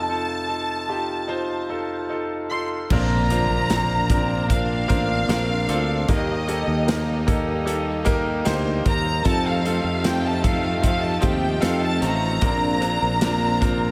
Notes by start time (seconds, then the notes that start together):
Already playing: F1 F2 D#4 F4 A4 A5
0.08 D#4 F4 A4
0.48 D#4 F4 A4
0.89 D#4 F4 G4
1.27 D#4 F4 C5
1.69 D#4 F4 A4
2.09 D#4 F4 A4
2.51 D#4 F4 A4 C6
2.90 A#1 A#2 A#3 C4 D4 F4 A#4 A#5, kick, crash, impact
3.30 C4 D4 F4 A#4, closed hi-hat
3.50 A#1
3.70 A#3 C4 D4 F4 A#4, snare, closed hi-hat
4.10 C4 D4 F4 A#4, kick, closed hi-hat
4.48 C4 D4 F4 A#4 F5, kick, closed hi-hat
4.88 A1 C4 D4 F4 A#4, kick, closed hi-hat
5.29 A#1 A#3 C4 D4 F4 A#4, snare, closed hi-hat
5.69 D2 C4 D4 F4 A4, closed hi-hat
6.08 D#2 D#3 G3 A#3 D#4 G4 A#4 D#5, kick, closed hi-hat
6.48 A#3 D#4 G4 A4 A#4, closed hi-hat
6.67 D#2
6.87 D#3 A#3 D#4 G4 A#4, snare, closed hi-hat
7.27 A#3 D#4 G4 A4 A#4, kick, closed hi-hat
7.65 A#3 D#4 G4 A4, closed hi-hat
8.05 A#3 D#4 G4 A#4, kick, closed hi-hat
8.45 D2 A#3 D#4 G4 A#4 C5, snare, closed hi-hat
8.84 D#2 A#3 D#4 G4 A#4 A#5, kick, closed hi-hat
9.24 F2 F3 A3 C4 D#4 F4 G4 A4 A5, kick, closed hi-hat
9.47 F5
9.65 A3 C4 D#4 F4 A4, closed hi-hat
9.84 F2
10.04 A3 C4 D#4 F4 C5 G5, snare, closed hi-hat
10.26 A5
10.43 A3 C4 D#4 F4 A4 F5, kick, closed hi-hat
10.82 C4 D#4 F4 A4 F5, kick, closed hi-hat
11.02 A5
11.21 D#2 A3 C4 D#4 F4 G4 G5, kick, closed hi-hat
11.60 F2 A3 C4 D#4 F4 A4 F5, snare, closed hi-hat
11.65 F4
11.81 A5
12.00 A1 A3 C4 D#4 F4 A#5, closed hi-hat
12.41 A#1 A#2 A#3 C4 D4 F4 A#4, kick, closed hi-hat
12.80 C4 D4 F4 A#4, closed hi-hat
13.02 A#1
13.21 A#3 C4 D4 F4 A#4, snare, closed hi-hat
13.61 C4 D4 F4 A#4, kick, closed hi-hat